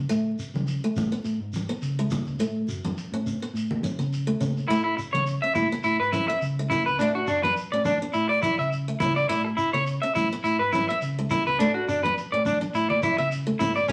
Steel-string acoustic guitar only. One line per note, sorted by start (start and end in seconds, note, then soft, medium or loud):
0.09 0.35 A3 medium
0.84 1.09 A3 medium
1.12 1.37 B3 medium
1.69 1.94 B3 medium
1.99 2.10 G#3 medium
2.12 2.37 B3 medium
2.40 2.65 A3 medium
2.85 3.09 B3 medium
3.14 3.38 C#4 medium
3.42 3.67 B3 medium
3.84 3.97 C#4 medium
3.99 4.24 B3 medium
4.27 4.39 A3 medium
4.41 4.66 C#4 medium
4.70 4.95 A3 medium
5.15 5.39 B3 medium
5.44 5.68 C#4 medium
5.72 5.97 B3 medium
6.14 6.27 C#4 medium
6.30 6.54 B3 medium
6.59 6.70 G#3 medium
6.72 6.96 B3 medium
7.01 7.25 A3 medium
7.45 7.69 B3 medium
7.73 7.98 C#4 medium
8.02 8.27 B3 medium
8.44 8.57 E4 medium
8.88 8.99 A3 medium
9.02 9.26 C#4 medium
9.29 9.54 A3 medium
9.74 9.99 B3 medium
10.03 10.28 C#4 medium
10.33 10.57 B3 medium
10.75 10.88 C#4 medium
10.90 11.15 B3 medium
11.19 11.29 G#3 medium
11.31 11.56 B3 medium
11.60 11.85 A3 medium
12.05 12.30 B3 medium
12.34 12.58 C#4 medium
12.61 12.86 B3 medium
13.03 13.17 E4 medium
13.18 13.43 B3 medium
13.47 13.58 A3 medium
13.61 13.85 C#4 medium